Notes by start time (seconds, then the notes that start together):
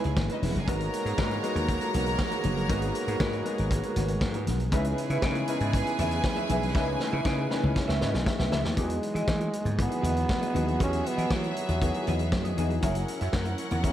Already playing: C#3 E3 G#3 B3 C#4 D#4 E4 G#4 B4 G#5
0.04 C#2, muted clean electric guitar stroke, closed hi-hat
0.16 G#1, muted clean electric guitar stroke, kick, snare, high conga
0.29 D#4 E4 G#4 B4 D#5, closed hi-hat
0.42 E1 E4 G#4 B4 E5, snare, open hi-hat, high conga
0.51 F#4 F#5, muted clean electric guitar stroke
0.55 F#1 G#4 G#5, closed hi-hat
0.67 G#1 G#3 A#3 B3 D#4 F#4 G#4 A#4 C#5 A#5, kick, closed hi-hat, muted conga
0.80 muted clean electric guitar stroke, closed hi-hat
0.93 muted clean electric guitar stroke, closed hi-hat
1.05 G#2 B3 F#4 A#4, closed hi-hat
1.17 G#2 G#3 D#4 F#4 A#4 B4, kick, snare, high conga
1.31 muted clean electric guitar stroke, closed hi-hat
1.43 G#3 B3 D#4 F#4 A#4, closed hi-hat
1.55 D#2, muted clean electric guitar stroke, closed hi-hat
1.68 muted clean electric guitar stroke, kick, closed hi-hat, muted conga
1.81 B3 F#4 A#4, closed hi-hat
1.94 B1 B3 F#4 A#4, closed hi-hat, muted conga, low conga
2.06 muted clean electric guitar stroke, closed hi-hat
2.19 muted clean electric guitar stroke, kick, snare, high conga
2.31 B3 F#4 A#4, closed hi-hat, high conga
2.44 F#1 B3 F#4 A#4, closed hi-hat, high conga
2.56 muted clean electric guitar stroke, closed hi-hat
2.69 G#1 G#3 B3 D#4 F#4 A#4, kick, closed hi-hat, muted conga
2.82 muted clean electric guitar stroke, closed hi-hat
2.95 muted clean electric guitar stroke, closed hi-hat
3.08 G#2 B3 F#4 A#4, closed hi-hat
3.19 G#2 G#3 D#4 F#4 A#4 B4, kick, snare, high conga
3.33 muted clean electric guitar stroke, closed hi-hat
3.45 G#3 B3 D#4 F#4 A#4, closed hi-hat
3.58 G#1, muted clean electric guitar stroke, closed hi-hat
3.71 muted clean electric guitar stroke, kick, closed hi-hat, muted conga
3.83 muted clean electric guitar stroke, closed hi-hat
3.96 G#1 B3 F#4 A#4, closed hi-hat, low conga
4.08 muted clean electric guitar stroke, closed hi-hat
4.21 G#2, muted clean electric guitar stroke, kick, snare, high conga
4.34 B3 F#4 A#4, closed hi-hat, high conga
4.47 B1 B3 F#4 A#4, snare, closed hi-hat, high conga
4.60 muted clean electric guitar stroke, closed hi-hat
4.72 C#2 C#3 E3 G#3 B3 C#4 D#4 E4 G#4 B4 E5 G#5, kick, closed hi-hat, muted conga
4.84 muted clean electric guitar stroke, closed hi-hat
4.98 muted clean electric guitar stroke, closed hi-hat
5.10 C#3 G#4 B4 E5, closed hi-hat
5.22 C#3 C#4 D#4 E4 B4, muted clean electric guitar stroke, kick, snare, high conga
5.35 muted clean electric guitar stroke, closed hi-hat
5.48 C#3 C#4 D#4 E4 B4, closed hi-hat
5.60 G#2, muted clean electric guitar stroke, closed hi-hat
5.73 muted clean electric guitar stroke, kick, closed hi-hat, muted conga
5.86 muted clean electric guitar stroke, closed hi-hat
5.99 E2 G#4 B4 E5, closed hi-hat, muted conga, low conga
6.11 muted clean electric guitar stroke, closed hi-hat
6.24 muted clean electric guitar stroke, kick, snare, high conga
6.36 G#4 B4 E5, closed hi-hat, high conga
6.49 B1 G#4 B4 E5, closed hi-hat, high conga
6.62 muted clean electric guitar stroke, closed hi-hat
6.74 C#2 C#3 C#4 D#4 E4 G#4 B4 E5, kick, snare, muted conga
6.87 muted clean electric guitar stroke
7.00 muted clean electric guitar stroke, snare
7.12 C#3 G#4 B4 E5
7.25 C#3 C#4 D#4 E4 B4, muted clean electric guitar stroke, kick, snare, high conga
7.38 muted clean electric guitar stroke
7.50 C#3 C#4 D#4 E4 B4, snare
7.63 C#2, muted clean electric guitar stroke, low conga
7.76 C#5, muted clean electric guitar stroke, kick, snare, muted conga
7.87 C#2 G#4 B4 E5, snare
8.01 G#2 G#4 B4 D#5 E5, snare, low conga
8.14 B1, muted clean electric guitar stroke, snare
8.26 E5, muted clean electric guitar stroke, kick, snare, high conga
8.38 B1 G#4 B4 E5, snare, high conga
8.51 C#2 G#4 B4 E5, snare, high conga
8.64 D#2, muted clean electric guitar stroke, snare
8.77 E2 E3 F#3 G#3 B3 D#4 F#4 G#4 D#5, kick, closed hi-hat, muted conga
8.89 muted clean electric guitar stroke, closed hi-hat
9.02 muted clean electric guitar stroke, closed hi-hat
9.14 E3 F#4 G#4 D#5, closed hi-hat
9.27 E3, muted clean electric guitar stroke, kick, snare, high conga
9.40 muted clean electric guitar stroke, closed hi-hat
9.53 closed hi-hat
9.65 G#2, muted clean electric guitar stroke, closed hi-hat, low conga
9.77 D#3 E3 B3 F#4 G#4 E5, muted clean electric guitar stroke, kick, closed hi-hat, muted conga
9.82 B3
9.90 muted clean electric guitar stroke, closed hi-hat
10.02 E2 F#4 G#4 D#5, closed hi-hat, muted conga, low conga
10.15 muted clean electric guitar stroke, closed hi-hat
10.28 muted clean electric guitar stroke, kick, snare, high conga
10.41 F#4 G#4 D#5, closed hi-hat
10.54 D#2 E3 B3 D#4 F#4 G#4 D#5, closed hi-hat, high conga
10.67 muted clean electric guitar stroke, closed hi-hat
10.79 E2 D#3 E3 B3 F#4 G4 G#4 D#5, kick, closed hi-hat, muted conga
10.83 C#4
10.87 G#4
10.92 muted clean electric guitar stroke, closed hi-hat
11.05 B3, muted clean electric guitar stroke, closed hi-hat
11.17 E3 F#4 G#4 D#5, closed hi-hat
11.30 E3 F#3, kick, snare, high conga
11.43 muted clean electric guitar stroke, closed hi-hat
11.56 closed hi-hat
11.69 E2, muted clean electric guitar stroke, closed hi-hat, low conga
11.81 D#3 E3 B3 F#4 G#4, muted clean electric guitar stroke, kick, closed hi-hat, muted conga
11.94 muted clean electric guitar stroke, closed hi-hat
12.07 E2 F#4 G#4 D#5, closed hi-hat, muted conga, low conga
12.19 muted clean electric guitar stroke, closed hi-hat
12.32 F#2, muted clean electric guitar stroke, kick, snare, high conga
12.44 F#4 G#4 D#5, closed hi-hat
12.57 E2 E3 B3 D#4 F#4 G#4 D#5, closed hi-hat, high conga
12.70 muted clean electric guitar stroke, closed hi-hat
12.82 F#1 F#3 C#4 E4 F#4 G#4 A#4 E5 F#5, kick, closed hi-hat, muted conga
12.95 muted clean electric guitar stroke, closed hi-hat
13.08 muted clean electric guitar stroke, closed hi-hat
13.21 F#2 F#4 A#4 E5, closed hi-hat
13.33 F#2, muted clean electric guitar stroke, kick, snare, high conga
13.45 muted clean electric guitar stroke, closed hi-hat
13.58 closed hi-hat
13.71 E2, muted clean electric guitar stroke, closed hi-hat, low conga
13.83 F#3 A#3 C#4 E4 G#4 A#4, muted clean electric guitar stroke, kick, closed hi-hat, muted conga